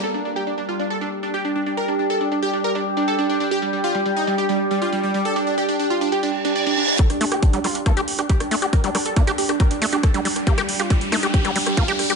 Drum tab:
HH |xx-xxx-xxx-xxx-x|xx-xxx-xxx-xxx-x|xx-xxx-xxx-xxx-x|xx-xxx-xxx-xxx-x|
SD |----------------|----------------|----------------|----------------|
BD |----------------|----------------|----------------|----------------|

HH |xxoxxxoxxxoxxxox|xxoxxxoxxxoxxxox|xxoxxxoxxxoxxxox|
SD |-r-r--r-r--r-r--|r-r--r-r--r-r--r|-r--r-r--r-r--r-|
BD |o---o---o---o---|o---o---o---o---|o---o---o---o---|